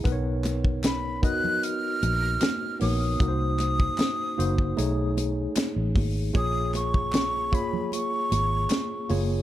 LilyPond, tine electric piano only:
\new Staff \with { instrumentName = "Tine electric piano" } { \time 4/4 \key ces \lydian \tempo 4 = 76 <b dis' ais' b' cis''>4 r8 <b dis' ais' dis''>4. r8 <b dis' ais' cis''>8 | <bes ees' ges' bes' c''>4 r8 <bes ees' ges' c''>8 <a dis' gis' cis''>4. r8 | <bes f' aes' des''>4 r8 <bes f' aes' des''>4. r8 <bes f' aes' des''>8 | }